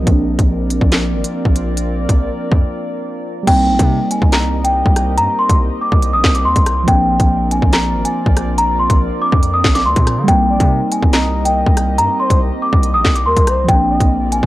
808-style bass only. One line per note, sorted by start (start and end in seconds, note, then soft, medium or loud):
0.07 0.38 A#1 loud
0.39 0.80 A#1 loud
0.81 1.15 A#1 loud
1.13 1.23 G#1 loud
1.45 2.07 A#1 loud
2.09 2.29 A#1 loud
2.52 2.62 F2 loud
3.47 3.70 C2 loud
3.69 3.79 A#1 loud
3.79 4.00 C3 loud
4.22 4.83 C2 loud
4.86 5.19 C2 loud
5.18 5.28 G2 loud
5.49 5.70 C2 loud
5.92 6.15 C2 loud
6.13 6.23 A#1 loud
6.24 6.47 C2 loud
6.45 6.55 D#2 loud
6.56 6.86 C2 loud
6.88 7.18 A#1 loud
7.20 7.61 A#1 loud
7.62 7.96 A#1 loud
7.94 8.04 G#1 loud
8.26 8.87 A#1 loud
8.90 9.10 A#1 loud
9.32 9.63 F2 loud
9.64 9.87 A#1 loud
9.86 9.96 D2 loud
9.96 10.19 A#2 loud
10.17 10.28 D3 loud
10.28 10.51 C2 loud
10.49 10.59 A#1 loud
10.60 10.80 C3 loud
11.03 11.64 C2 loud
11.66 12.00 C2 loud
11.98 12.08 G2 loud
12.30 12.51 C2 loud
12.73 12.95 C2 loud
12.94 13.04 A#1 loud
13.05 13.27 C2 loud
13.26 13.36 D#2 loud
13.37 13.67 C2 loud
13.69 13.99 A#1 loud
14.00 14.41 A#1 loud
14.43 14.46 A#1 loud